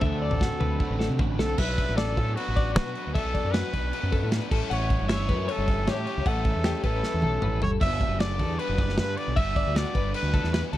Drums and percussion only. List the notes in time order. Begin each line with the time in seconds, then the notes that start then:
0.01 kick, floor tom
0.31 floor tom
0.41 kick, snare
0.61 floor tom, mid tom
0.80 kick
1.00 snare
1.19 kick, mid tom
1.39 snare
1.58 kick, crash
1.78 kick, crash
1.98 snare, crash
2.17 kick, crash
2.37 crash
2.57 kick, crash
2.76 snare, crash
2.95 crash
3.15 kick, crash
3.35 kick, crash
3.54 snare, crash
3.73 kick, crash
3.93 crash
4.12 kick, crash
4.32 snare, crash
4.51 kick, crash
4.71 crash
4.90 kick, crash
5.09 snare, crash
5.29 kick, crash
5.48 crash
5.68 kick, crash
5.87 snare, crash
6.07 crash
6.26 kick, crash
6.44 kick, crash
6.64 snare, crash
6.83 kick, crash
7.03 snare
7.22 high tom
7.42 mid tom
7.62 floor tom
7.81 kick, crash
8.01 kick, crash
8.20 snare, crash
8.39 kick, crash
8.59 crash
8.78 kick, crash
8.89 snare
8.97 snare, crash
9.17 crash
9.37 kick, crash
9.56 kick, crash
9.76 snare, crash
9.95 kick, crash
10.14 crash
10.34 kick, crash
10.44 snare
10.54 snare, crash
10.73 crash